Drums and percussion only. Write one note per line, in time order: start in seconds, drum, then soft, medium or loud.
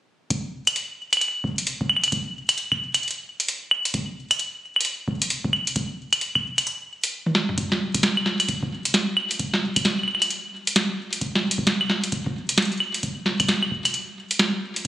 0.30 kick loud
0.30 closed hi-hat soft
0.67 closed hi-hat medium
0.67 claves medium
0.76 closed hi-hat soft
1.13 closed hi-hat medium
1.13 claves soft
1.17 claves soft
1.21 closed hi-hat soft
1.21 claves soft
1.28 claves soft
1.44 kick loud
1.58 closed hi-hat medium
1.67 closed hi-hat medium
1.81 kick loud
1.90 claves medium
1.97 claves soft
2.04 closed hi-hat medium
2.04 claves soft
2.08 claves soft
2.12 kick loud
2.12 closed hi-hat soft
2.49 closed hi-hat medium
2.49 claves medium
2.58 closed hi-hat soft
2.72 kick medium
2.72 claves medium
2.94 closed hi-hat medium
2.94 claves medium
3.03 closed hi-hat soft
3.08 closed hi-hat soft
3.11 closed hi-hat soft
3.40 closed hi-hat medium
3.48 closed hi-hat medium
3.71 claves medium
3.85 closed hi-hat medium
3.94 kick loud
3.94 closed hi-hat soft
4.31 closed hi-hat medium
4.31 claves medium
4.39 closed hi-hat soft
4.76 claves medium
4.81 closed hi-hat medium
4.85 closed hi-hat soft
5.08 kick loud
5.22 closed hi-hat medium
5.30 closed hi-hat medium
5.45 kick loud
5.53 claves medium
5.67 closed hi-hat medium
5.76 kick loud
5.76 closed hi-hat soft
6.13 closed hi-hat medium
6.13 claves medium
6.21 closed hi-hat soft
6.35 kick medium
6.35 claves medium
6.58 closed hi-hat medium
6.58 claves soft
6.67 closed hi-hat soft
7.04 closed hi-hat medium
7.26 high tom medium
7.35 snare medium
7.49 mid tom medium
7.58 kick loud
7.58 closed hi-hat medium
7.72 snare medium
7.95 kick loud
7.95 closed hi-hat medium
8.03 snare loud
8.03 closed hi-hat medium
8.17 claves medium
8.26 snare medium
8.40 closed hi-hat medium
8.40 claves medium
8.49 kick loud
8.49 closed hi-hat medium
8.63 kick loud
8.85 closed hi-hat medium
8.94 snare loud
8.94 closed hi-hat medium
9.17 claves medium
9.31 closed hi-hat medium
9.39 kick loud
9.39 closed hi-hat medium
9.54 snare medium
9.76 kick loud
9.76 closed hi-hat medium
9.76 claves medium
9.85 snare loud
9.85 closed hi-hat soft
9.99 claves soft
10.03 claves soft
10.08 claves soft
10.15 claves soft
10.22 closed hi-hat medium
10.22 claves soft
10.30 closed hi-hat medium
10.67 closed hi-hat medium
10.76 snare loud
10.76 closed hi-hat medium
11.13 closed hi-hat medium
11.21 kick loud
11.21 closed hi-hat soft
11.35 snare medium
11.51 closed hi-hat medium
11.58 kick loud
11.67 snare loud
11.67 closed hi-hat soft
11.81 claves medium
11.90 snare medium
12.04 closed hi-hat medium
12.12 kick loud
12.12 closed hi-hat medium
12.26 kick loud
12.49 closed hi-hat medium
12.58 snare loud
12.58 closed hi-hat medium
12.62 closed hi-hat soft
12.65 closed hi-hat soft
12.72 closed hi-hat soft
12.77 closed hi-hat soft
12.77 claves medium
12.94 closed hi-hat medium
13.03 kick loud
13.03 closed hi-hat medium
13.26 snare medium
13.40 kick loud
13.40 closed hi-hat medium
13.40 claves medium
13.48 snare loud
13.48 closed hi-hat soft
13.63 claves medium
13.71 kick medium
13.85 closed hi-hat medium
13.85 claves soft
13.94 closed hi-hat soft
14.31 closed hi-hat medium
14.39 snare loud
14.39 closed hi-hat soft
14.76 closed hi-hat medium